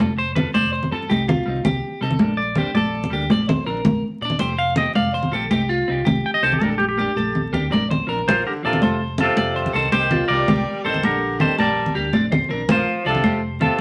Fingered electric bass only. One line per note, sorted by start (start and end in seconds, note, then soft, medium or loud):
0.00 0.44 F1 loud
0.56 0.85 F1 medium
0.91 1.07 G2 loud
1.10 1.39 C2 loud
1.46 1.61 C2 medium
1.63 1.79 C2 medium
2.01 2.17 C3 medium
2.19 2.64 A#1 medium
2.74 3.04 A#1 medium
3.11 3.27 D2 medium
3.29 3.59 A#1 medium
3.67 3.82 A#1 medium
3.86 4.01 A#1 medium
4.21 4.37 A#2 medium
4.41 4.85 F1 medium
4.96 5.25 F1 loud
5.32 5.47 A#1 medium
5.51 5.80 C2 medium
5.88 6.03 C2 medium
6.06 6.21 C2 loud
6.43 6.58 C2 medium
6.61 7.05 A#1 loud
7.16 7.46 A#1 medium
7.51 7.67 D2 loud
7.70 8.00 A#1 medium
8.09 8.23 A#1 medium
8.27 8.42 A#1 medium
8.65 8.79 A#2 medium
8.82 9.26 F1 medium
9.36 9.66 F1 medium
9.73 9.88 C2 medium
9.92 10.21 C2 medium
10.29 10.44 C2 medium
10.48 10.63 C2 medium
10.86 11.00 A1 medium
11.04 11.47 A#1 medium
11.58 11.87 A#1 medium
11.96 12.10 D2 medium
12.13 12.42 A#1 medium
12.50 12.65 A#1 medium
12.68 12.83 A#1 medium
13.05 13.20 C2 medium
13.23 13.67 F1 medium